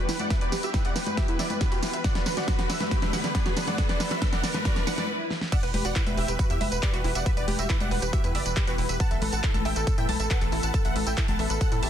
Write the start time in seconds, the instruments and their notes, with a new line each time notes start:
Already playing: analog synth pad E3 G3 B3 F#4 G4, riser
0.09 analog synth bass E1, synth arpeggio sound E4, supersaw synth B4, snare, open hi-hat, tambourine
0.19 analog synth bass E1, supersaw synth D5 F#5, synth arpeggio sound E5, closed hi-hat, tambourine, high conga
0.30 supersaw synth B4, synth arpeggio sound E5, kick, snare, closed hi-hat, tambourine
0.41 analog synth bass E1, supersaw synth B4 D5, synth arpeggio sound B4, closed hi-hat, tambourine
0.52 analog synth bass E1, synth arpeggio sound G4, supersaw synth B4, snare, open hi-hat, tambourine
0.63 analog synth bass E1, synth arpeggio sound F#4, supersaw synth G4 E5, closed hi-hat, tambourine
0.74 synth arpeggio sound E4, supersaw synth B4, kick, snare, closed hi-hat, tambourine
0.85 analog synth bass E1, supersaw synth D5 F#5, synth arpeggio sound E5, closed hi-hat, tambourine
0.96 analog synth bass E1, synth arpeggio sound B4, supersaw synth B4, snare, open hi-hat, tambourine
1.06 analog synth bass E1, synth arpeggio sound G4, supersaw synth B4, closed hi-hat, tambourine, high conga
1.17 synth arpeggio sound F#4, supersaw synth G4 E5, kick, snare, closed hi-hat, tambourine
1.28 analog synth bass E2, synth arpeggio sound E4, supersaw synth B4, closed hi-hat, tambourine
1.39 analog synth bass F#1, supersaw synth B4 D5, synth arpeggio sound E5, snare, open hi-hat, tambourine
1.50 analog synth bass E1, supersaw synth B4, synth arpeggio sound B4, closed hi-hat, tambourine, high conga
1.61 synth arpeggio sound G4, supersaw synth B4, kick, snare, closed hi-hat, tambourine
1.72 analog synth bass E1, synth arpeggio sound F#4, supersaw synth G4 B4, closed hi-hat, tambourine
1.83 analog synth bass E1, synth arpeggio sound E4, supersaw synth B4, snare, open hi-hat, tambourine
1.93 analog synth bass E1, supersaw synth B4, synth arpeggio sound E5, closed hi-hat, tambourine
2.04 analog synth pad D3 F#3 B3 B4, supersaw synth D5 F#5, synth arpeggio sound F#5, kick, snare, closed hi-hat, tambourine
2.15 analog synth bass B1, supersaw synth B4, synth arpeggio sound D5, snare, closed hi-hat, tambourine
2.26 analog synth bass B1, supersaw synth B4, synth arpeggio sound B4, snare, open hi-hat, tambourine
2.37 analog synth bass B1, synth arpeggio sound F#4, supersaw synth D5 F#5, snare, closed hi-hat, tambourine
2.48 synth arpeggio sound D4, supersaw synth B4, kick, snare, closed hi-hat, tambourine
2.59 analog synth bass B1, supersaw synth B4, synth arpeggio sound F#5, snare, closed hi-hat, tambourine
2.69 analog synth bass B1, supersaw synth B4 E5, synth arpeggio sound D5, snare, open hi-hat, tambourine
2.80 analog synth bass B1, supersaw synth B4, synth arpeggio sound B4, snare, closed hi-hat, tambourine, high conga
2.91 synth arpeggio sound F#4, supersaw synth B4, kick, snare, closed hi-hat, tambourine
3.02 analog synth bass F#1, synth arpeggio sound D4, supersaw synth B4 E5, snare, closed hi-hat, tambourine, high conga
3.13 analog synth bass C2, supersaw synth B4, synth arpeggio sound F#5, snare, open hi-hat, tambourine, high conga
3.24 analog synth bass B1, supersaw synth B4, synth arpeggio sound D5, snare, closed hi-hat, tambourine
3.35 synth arpeggio sound B4, supersaw synth B4 D5, kick, snare, closed hi-hat, tambourine
3.46 analog synth bass B1, synth arpeggio sound F#4, supersaw synth B4, snare, closed hi-hat, tambourine
3.57 analog synth bass B1, synth arpeggio sound D4, supersaw synth B4, snare, open hi-hat, tambourine
3.67 analog synth bass B1, supersaw synth D5 F#5, synth arpeggio sound F#5, snare, closed hi-hat, tambourine, high conga
3.78 supersaw synth B4, synth arpeggio sound F#5, kick, snare, closed hi-hat, tambourine
3.89 analog synth bass B1, supersaw synth B4 D5, synth arpeggio sound D5, snare, closed hi-hat, tambourine
4.00 analog synth bass B1, synth arpeggio sound B4, supersaw synth B4, snare, open hi-hat, tambourine
4.11 analog synth bass B1, synth arpeggio sound F#4, supersaw synth B4 E5, snare, closed hi-hat, tambourine
4.22 synth arpeggio sound D4, supersaw synth B4, kick, snare, closed hi-hat, tambourine
4.33 analog synth bass B1, supersaw synth D5 F#5, synth arpeggio sound F#5, snare, closed hi-hat, tambourine
4.43 analog synth bass B1, supersaw synth B4, synth arpeggio sound D5, snare, open hi-hat, tambourine
4.54 analog synth bass B1, synth arpeggio sound B4, supersaw synth B4, snare, closed hi-hat, tambourine, high conga
4.65 synth arpeggio sound F#4, supersaw synth B4 D5, kick, snare, closed hi-hat, tambourine, swell
4.76 analog synth bass F#1, synth arpeggio sound D4, supersaw synth B4, snare, closed hi-hat, tambourine
4.87 analog synth bass C2, supersaw synth D4 B4, synth arpeggio sound F#5, snare, open hi-hat, tambourine
4.98 analog synth bass B1, supersaw synth B4, synth arpeggio sound D5, snare, closed hi-hat, tambourine, high conga
5.31 snare
5.41 snare
5.52 analog synth pad E3 G3 B3 F#4 G4, supersaw synth D5 F#5, synth arpeggio sound E5, synth pluck F#5, kick, closed hi-hat, tambourine, crash
5.63 analog synth bass E1, synth pluck B4, synth arpeggio sound B4, supersaw synth B4, closed hi-hat, tambourine
5.74 analog synth bass E1, synth arpeggio sound G4, synth pluck B4, supersaw synth B4, open hi-hat, high conga
5.85 analog synth bass E1, synth arpeggio sound F#4, supersaw synth D5 F#5, synth pluck F#5, closed hi-hat, tambourine
5.96 synth arpeggio sound E4, synth pluck B4, supersaw synth B4, kick, clap, closed hi-hat, tambourine
6.06 analog synth bass E1, synth pluck B4, supersaw synth B4, synth arpeggio sound E5, closed hi-hat, tambourine, high conga
6.17 analog synth bass E1, supersaw synth G4 E5, synth arpeggio sound B4, synth pluck E5, open hi-hat
6.28 analog synth bass E1, synth arpeggio sound G4, synth pluck B4, supersaw synth B4, closed hi-hat, tambourine
6.39 synth arpeggio sound F#4, synth pluck B4, supersaw synth B4, kick, closed hi-hat, tambourine
6.50 analog synth bass E2, synth arpeggio sound E4, supersaw synth G4 E5, synth pluck E5, closed hi-hat, tambourine
6.61 analog synth bass F#1, synth pluck B4, supersaw synth B4, synth arpeggio sound E5, open hi-hat, high conga
6.72 analog synth bass E1, synth pluck B4, synth arpeggio sound B4, supersaw synth B4, closed hi-hat, tambourine
6.83 synth arpeggio sound G4, supersaw synth B4 D5, synth pluck D5, kick, clap, closed hi-hat, tambourine
6.93 analog synth bass E1, synth arpeggio sound F#4, synth pluck B4, supersaw synth B4, closed hi-hat, tambourine
7.04 analog synth bass E1, synth arpeggio sound E4, supersaw synth B4, synth pluck B4, open hi-hat
7.15 analog synth bass E1, supersaw synth D5 F#5, synth arpeggio sound E5, synth pluck F#5, closed hi-hat, tambourine
7.26 supersaw synth B4, synth pluck B4, synth arpeggio sound E5, kick, closed hi-hat, tambourine
7.37 analog synth bass E1, synth arpeggio sound B4, supersaw synth B4 D5, synth pluck D5, closed hi-hat, tambourine
7.48 analog synth bass E1, synth arpeggio sound G4, synth pluck B4, supersaw synth B4, open hi-hat, high conga
7.59 analog synth bass E1, synth arpeggio sound F#4, supersaw synth G4 E5, synth pluck E5, closed hi-hat, tambourine
7.69 synth arpeggio sound E4, supersaw synth B4, synth pluck B4, kick, clap, closed hi-hat, tambourine
7.80 analog synth bass E1, supersaw synth D5 F#5, synth arpeggio sound E5, synth pluck F#5, closed hi-hat, tambourine, high conga
7.91 analog synth bass E1, synth pluck B4, synth arpeggio sound B4, supersaw synth B4, open hi-hat
8.02 analog synth bass E1, synth arpeggio sound G4, synth pluck B4, supersaw synth B4, closed hi-hat, tambourine
8.13 synth arpeggio sound F#4, supersaw synth G4 E5, synth pluck E5, kick, closed hi-hat, tambourine
8.24 analog synth bass E2, synth arpeggio sound E4, synth pluck B4, supersaw synth B4, closed hi-hat, tambourine
8.35 analog synth bass F#1, supersaw synth B4 D5, synth pluck D5, synth arpeggio sound E5, open hi-hat
8.46 analog synth bass E1, synth pluck B4, synth arpeggio sound B4, supersaw synth B4, closed hi-hat, tambourine
8.56 synth arpeggio sound G4, supersaw synth B4, kick, clap, closed hi-hat, tambourine
8.67 analog synth bass E1, synth arpeggio sound F#4, supersaw synth G4 B4, synth pluck B4, closed hi-hat, tambourine
8.78 analog synth bass E1, synth arpeggio sound E4, synth pluck B4, supersaw synth B4, open hi-hat
8.89 analog synth bass E1, synth pluck B4, supersaw synth B4, synth arpeggio sound E5, closed hi-hat, tambourine
9.00 analog synth pad A3 A4 B4, supersaw synth F#5 A5, synth pluck A5, synth arpeggio sound A5, kick, closed hi-hat, tambourine
9.11 analog synth bass A1, supersaw synth A4, synth pluck A4, synth arpeggio sound E5, closed hi-hat, tambourine
9.21 analog synth bass A1, synth pluck A4, supersaw synth A4, synth arpeggio sound B4, open hi-hat, high conga
9.32 analog synth bass A1, synth arpeggio sound A4, supersaw synth F#5 A5, synth pluck A5, closed hi-hat, tambourine
9.43 synth arpeggio sound E4, synth pluck A4, supersaw synth A4, kick, clap, closed hi-hat, tambourine
9.54 analog synth bass A1, synth pluck A4, supersaw synth A4, synth arpeggio sound A5, closed hi-hat, tambourine, high conga
9.65 analog synth bass A1, supersaw synth E5 G5, synth arpeggio sound E5, synth pluck G5, open hi-hat
9.76 analog synth bass A1, supersaw synth A4, synth pluck A4, synth arpeggio sound B4, closed hi-hat, tambourine
9.87 supersaw synth A4, synth pluck A4, synth arpeggio sound A4, kick, closed hi-hat, tambourine
9.98 analog synth bass A2, synth arpeggio sound E4, supersaw synth E5 G5, synth pluck G5, closed hi-hat, tambourine
10.09 analog synth bass B1, supersaw synth A4, synth pluck A4, synth arpeggio sound A5, open hi-hat, high conga
10.19 analog synth bass A1, supersaw synth A4, synth pluck A4, synth arpeggio sound E5, closed hi-hat, tambourine
10.30 supersaw synth A4 F#5, synth arpeggio sound B4, synth pluck F#5, kick, clap, closed hi-hat, tambourine
10.41 analog synth bass A1, synth pluck A4, supersaw synth A4, synth arpeggio sound A4, closed hi-hat, tambourine
10.52 analog synth bass A1, synth arpeggio sound E4, synth pluck A4, supersaw synth A4, open hi-hat
10.63 analog synth bass A1, supersaw synth F#5 A5, synth pluck A5, synth arpeggio sound A5, closed hi-hat, tambourine
10.74 synth pluck A4, supersaw synth A4, synth arpeggio sound A5, kick, closed hi-hat, tambourine
10.85 analog synth bass A1, supersaw synth A4 F#5, synth arpeggio sound E5, synth pluck F#5, closed hi-hat, tambourine
10.96 analog synth bass A1, synth pluck A4, supersaw synth A4, synth arpeggio sound B4, open hi-hat, high conga
11.06 analog synth bass A1, synth arpeggio sound A4, supersaw synth E5 G5, synth pluck G5, closed hi-hat, tambourine
11.17 synth arpeggio sound E4, synth pluck A4, supersaw synth A4, kick, clap, closed hi-hat, tambourine
11.28 analog synth bass A1, supersaw synth F#5 A5, synth pluck A5, synth arpeggio sound A5, closed hi-hat, tambourine, high conga
11.39 analog synth bass A1, synth pluck A4, supersaw synth A4, synth arpeggio sound E5, open hi-hat
11.50 analog synth bass A1, synth pluck A4, supersaw synth A4, synth arpeggio sound B4, closed hi-hat, tambourine
11.61 synth arpeggio sound A4, supersaw synth A4 F#5, synth pluck F#5, kick, closed hi-hat, tambourine
11.72 analog synth bass A2, synth arpeggio sound E4, supersaw synth A4, synth pluck A4, closed hi-hat, tambourine
11.83 analog synth bass A1, supersaw synth G4 E5, synth pluck E5, synth arpeggio sound A5, open hi-hat